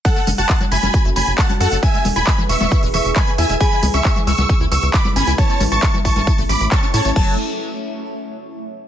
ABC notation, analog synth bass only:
X:1
M:4/4
L:1/16
Q:1/4=135
K:F#m
V:1 name="Analog synth bass" clef=bass
z2 F,,, F,,, z2 F,,, F,,, z F,,, F,,, F,,, z2 F,, F,,, | z2 E,,, E,,, z2 E,,, E,,, z E,,, E,,, E,,, z2 E,, E,,, | z2 C,, C,, z2 C,, C,, z C,, C,, C,, z2 G,,, C,, | z2 A,,, A,,, z2 A,,, A,,, z A,,, A,,, A,,, z2 A,, A,,, |
F,,,2 z12 z2 |]